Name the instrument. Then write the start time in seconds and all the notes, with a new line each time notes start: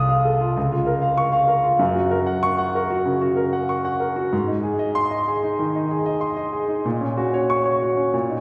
grand piano
Already playing: C2 F4 A4 F5 D#6
0.09 F5
0.25 A4
0.41 F4
0.57 C#2
0.72 F4
0.87 A#4
1.02 F5
1.18 C#6
1.32 F5
1.48 A#4
1.63 F4
1.79 F#2
1.95 F#4
2.11 A#4
2.26 F#5
2.43 C#6
2.59 F#5
2.75 A#4
2.90 F#4
3.06 C#3
3.21 F#4
3.37 A#4
3.53 F#5
3.69 C#6
3.85 F#5
4.00 A#4
4.16 F#4
4.33 G#2
4.47 D#4
4.63 G#4
4.79 D#5
4.95 C6
5.11 D#5
5.28 G#4
5.43 D#4
5.59 D#3
5.75 D#4
5.91 G#4
6.06 D#5
6.21 C6
6.37 D#5
6.53 G#4
6.68 D#4
6.85 A#2
7.01 C#4
7.17 F#4
7.34 C#5
7.50 C#6
7.65 C#5
7.82 F#4
7.97 C#4
8.13 A#2
8.30 D#4